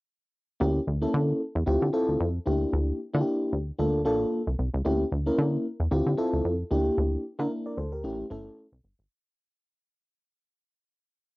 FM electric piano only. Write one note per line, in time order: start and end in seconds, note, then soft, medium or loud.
0.60 0.79 A#3 medium
0.60 0.79 C#4 medium
0.60 0.79 E4 medium
0.60 0.79 G4 medium
1.01 1.41 A#3 medium
1.01 1.41 C#4 medium
1.01 1.42 E4 medium
1.01 1.42 A4 medium
1.66 1.88 C4 medium
1.66 1.89 E4 medium
1.66 1.89 F4 medium
1.66 1.89 G4 loud
1.93 2.29 C4 medium
1.93 2.30 E4 medium
1.93 2.30 F4 medium
1.93 2.30 A4 loud
2.46 2.99 A#3 medium
2.46 2.99 D4 medium
2.46 2.99 E4 medium
2.46 3.00 G4 medium
3.14 3.54 A#3 medium
3.14 3.54 D4 medium
3.14 3.54 E4 medium
3.14 3.20 F4 medium
3.21 3.57 G4 medium
3.79 4.01 A#3 medium
3.79 4.01 D4 medium
3.79 4.01 F4 medium
3.79 4.01 A4 medium
4.05 4.42 A#3 medium
4.05 4.42 D4 medium
4.05 4.42 F4 medium
4.05 4.42 A4 loud
4.85 5.04 A#3 medium
4.85 5.04 C#4 medium
4.85 5.04 E4 medium
4.85 5.04 G4 medium
5.26 5.66 A#3 medium
5.26 5.66 C#4 medium
5.26 5.66 E4 medium
5.26 5.67 A#4 medium
5.91 6.13 C4 medium
5.91 6.13 E4 medium
5.91 6.14 F4 medium
5.91 6.14 G4 medium
6.17 6.54 C4 medium
6.17 6.54 E4 medium
6.17 6.54 F4 medium
6.17 6.54 A4 loud
6.71 7.24 A#3 medium
6.71 7.24 D4 medium
6.71 7.24 E4 medium
6.71 7.24 G4 loud
7.39 7.79 A#3 medium
7.39 7.79 D4 medium
7.39 7.79 E4 medium
7.39 7.51 A#4 medium
7.66 7.77 A#4 medium
7.66 7.77 D5 medium
7.77 7.92 A4 medium
7.77 7.92 C5 medium
7.92 8.03 G4 medium
7.92 8.18 A#4 medium
8.04 8.26 A3 medium
8.04 8.26 C#4 medium
8.04 8.26 E4 medium
8.04 8.26 G4 medium
8.30 8.67 A3 medium
8.30 8.67 C#4 medium
8.30 8.67 E4 medium
8.30 8.67 A4 loud